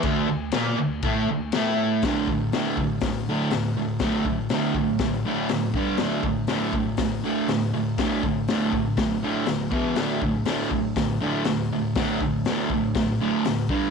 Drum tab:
CC |x-x-x-x-|--------|--------|--------|
HH |--------|o-o-o-o-|o-o-o-o-|o-o-o-o-|
SD |--o---o-|o-o-o-o-|o-o-o-o-|o-o-o-o-|
BD |o---o---|oo-oo---|oo-oo--o|-o-oo---|

CC |--------|--------|--------|
HH |o-o-o-o-|o-o-o-o-|o-o-o-o-|
SD |o-o-o-o-|o-o-o-o-|o-o-o-o-|
BD |oo-oo--o|-o-oo---|oo-oo--o|